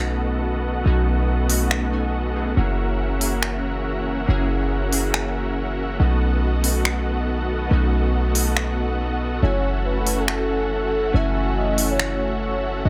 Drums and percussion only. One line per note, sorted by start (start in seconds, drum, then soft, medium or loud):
1.50 open hi-hat medium
1.71 finger snap medium
3.21 open hi-hat medium
3.43 finger snap medium
4.93 open hi-hat medium
5.14 finger snap medium
6.64 open hi-hat medium
6.85 finger snap medium
8.35 open hi-hat medium
8.57 finger snap medium
10.07 open hi-hat medium
10.28 finger snap medium
11.78 open hi-hat medium
11.99 finger snap medium